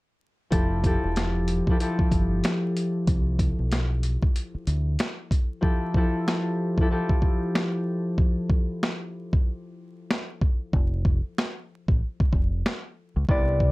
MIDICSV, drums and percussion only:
0, 0, Header, 1, 2, 480
1, 0, Start_track
1, 0, Tempo, 638298
1, 393, Time_signature, 4, 2, 24, 8
1, 10316, End_track
2, 0, Start_track
2, 0, Title_t, "Drums"
2, 391, Note_on_c, 9, 42, 85
2, 392, Note_on_c, 9, 36, 106
2, 466, Note_off_c, 9, 42, 0
2, 467, Note_off_c, 9, 36, 0
2, 630, Note_on_c, 9, 36, 96
2, 632, Note_on_c, 9, 42, 70
2, 705, Note_off_c, 9, 36, 0
2, 707, Note_off_c, 9, 42, 0
2, 874, Note_on_c, 9, 42, 78
2, 881, Note_on_c, 9, 38, 106
2, 885, Note_on_c, 9, 40, 83
2, 949, Note_off_c, 9, 42, 0
2, 956, Note_off_c, 9, 38, 0
2, 960, Note_off_c, 9, 40, 0
2, 1111, Note_on_c, 9, 42, 69
2, 1187, Note_off_c, 9, 42, 0
2, 1257, Note_on_c, 9, 36, 94
2, 1332, Note_off_c, 9, 36, 0
2, 1356, Note_on_c, 9, 42, 94
2, 1432, Note_off_c, 9, 42, 0
2, 1496, Note_on_c, 9, 36, 95
2, 1571, Note_off_c, 9, 36, 0
2, 1591, Note_on_c, 9, 36, 88
2, 1593, Note_on_c, 9, 42, 67
2, 1666, Note_off_c, 9, 36, 0
2, 1668, Note_off_c, 9, 42, 0
2, 1833, Note_on_c, 9, 42, 78
2, 1841, Note_on_c, 9, 38, 100
2, 1845, Note_on_c, 9, 40, 80
2, 1908, Note_off_c, 9, 42, 0
2, 1916, Note_off_c, 9, 38, 0
2, 1920, Note_off_c, 9, 40, 0
2, 2080, Note_on_c, 9, 42, 76
2, 2155, Note_off_c, 9, 42, 0
2, 2312, Note_on_c, 9, 36, 111
2, 2312, Note_on_c, 9, 42, 84
2, 2387, Note_off_c, 9, 42, 0
2, 2388, Note_off_c, 9, 36, 0
2, 2550, Note_on_c, 9, 36, 99
2, 2553, Note_on_c, 9, 42, 69
2, 2625, Note_off_c, 9, 36, 0
2, 2628, Note_off_c, 9, 42, 0
2, 2794, Note_on_c, 9, 42, 80
2, 2801, Note_on_c, 9, 38, 107
2, 2805, Note_on_c, 9, 40, 85
2, 2869, Note_off_c, 9, 42, 0
2, 2876, Note_off_c, 9, 38, 0
2, 2880, Note_off_c, 9, 40, 0
2, 3032, Note_on_c, 9, 42, 73
2, 3107, Note_off_c, 9, 42, 0
2, 3177, Note_on_c, 9, 36, 96
2, 3252, Note_off_c, 9, 36, 0
2, 3277, Note_on_c, 9, 42, 93
2, 3352, Note_off_c, 9, 42, 0
2, 3513, Note_on_c, 9, 42, 68
2, 3588, Note_off_c, 9, 42, 0
2, 3752, Note_on_c, 9, 42, 78
2, 3761, Note_on_c, 9, 38, 100
2, 3765, Note_on_c, 9, 40, 82
2, 3827, Note_off_c, 9, 42, 0
2, 3836, Note_off_c, 9, 38, 0
2, 3840, Note_off_c, 9, 40, 0
2, 3993, Note_on_c, 9, 36, 93
2, 4000, Note_on_c, 9, 42, 74
2, 4068, Note_off_c, 9, 36, 0
2, 4075, Note_off_c, 9, 42, 0
2, 4232, Note_on_c, 9, 36, 109
2, 4307, Note_off_c, 9, 36, 0
2, 4470, Note_on_c, 9, 36, 100
2, 4545, Note_off_c, 9, 36, 0
2, 4721, Note_on_c, 9, 38, 103
2, 4725, Note_on_c, 9, 40, 87
2, 4796, Note_off_c, 9, 38, 0
2, 4800, Note_off_c, 9, 40, 0
2, 5096, Note_on_c, 9, 36, 96
2, 5172, Note_off_c, 9, 36, 0
2, 5335, Note_on_c, 9, 36, 94
2, 5410, Note_off_c, 9, 36, 0
2, 5430, Note_on_c, 9, 36, 90
2, 5505, Note_off_c, 9, 36, 0
2, 5680, Note_on_c, 9, 38, 105
2, 5684, Note_on_c, 9, 40, 83
2, 5755, Note_off_c, 9, 38, 0
2, 5759, Note_off_c, 9, 40, 0
2, 6151, Note_on_c, 9, 36, 109
2, 6226, Note_off_c, 9, 36, 0
2, 6389, Note_on_c, 9, 36, 102
2, 6464, Note_off_c, 9, 36, 0
2, 6640, Note_on_c, 9, 38, 108
2, 6644, Note_on_c, 9, 40, 84
2, 6715, Note_off_c, 9, 38, 0
2, 6719, Note_off_c, 9, 40, 0
2, 7016, Note_on_c, 9, 36, 100
2, 7091, Note_off_c, 9, 36, 0
2, 7599, Note_on_c, 9, 38, 103
2, 7603, Note_on_c, 9, 40, 85
2, 7675, Note_off_c, 9, 38, 0
2, 7679, Note_off_c, 9, 40, 0
2, 7832, Note_on_c, 9, 36, 96
2, 7907, Note_off_c, 9, 36, 0
2, 8071, Note_on_c, 9, 36, 112
2, 8146, Note_off_c, 9, 36, 0
2, 8309, Note_on_c, 9, 36, 99
2, 8385, Note_off_c, 9, 36, 0
2, 8560, Note_on_c, 9, 38, 110
2, 8564, Note_on_c, 9, 40, 87
2, 8635, Note_off_c, 9, 38, 0
2, 8639, Note_off_c, 9, 40, 0
2, 8936, Note_on_c, 9, 36, 96
2, 9012, Note_off_c, 9, 36, 0
2, 9175, Note_on_c, 9, 36, 97
2, 9250, Note_off_c, 9, 36, 0
2, 9270, Note_on_c, 9, 36, 93
2, 9345, Note_off_c, 9, 36, 0
2, 9520, Note_on_c, 9, 38, 104
2, 9524, Note_on_c, 9, 40, 84
2, 9595, Note_off_c, 9, 38, 0
2, 9599, Note_off_c, 9, 40, 0
2, 9991, Note_on_c, 9, 36, 112
2, 10066, Note_off_c, 9, 36, 0
2, 10229, Note_on_c, 9, 36, 100
2, 10304, Note_off_c, 9, 36, 0
2, 10316, End_track
0, 0, End_of_file